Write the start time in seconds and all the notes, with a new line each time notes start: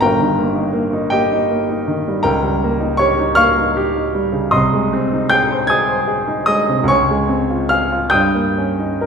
0.01 G1 G2 A#4 G5 A#5
0.21 D#3
0.39 A#3
0.55 D#4
0.73 A#3
0.93 D#4
1.10 A#3 G4 D#5 G5
1.32 D#4
1.50 A#3
1.69 D#4
1.87 D#3
2.08 G3
2.23 C#2 A#4 G5 A#5
2.43 G3
2.64 A#3
2.80 D#4
2.97 G4 C#5 C#6
3.19 D#4
3.35 A#3 F5 C#6 F6
3.58 D#4
3.77 G4
3.95 D#4
4.15 G3
4.32 C#3
4.51 C2 D#5 C6 D#6
4.73 G#3
4.93 C4
5.13 D#4
5.29 G#4 G5 G6
5.51 C5
5.67 G#4 G#5 D#6 G#6
5.88 C5
6.08 G#4
6.28 D#4
6.46 G#3 D#5 D#6
6.68 C3
6.84 C#2
6.88 C#5 G#5 C#6
7.11 G#3
7.29 C4
7.50 F4
7.69 G#4 F5 F6
7.92 F4
8.10 G2 G5 D#6 G6
8.35 A#3
8.58 C#4
8.79 D#4
9.01 A#4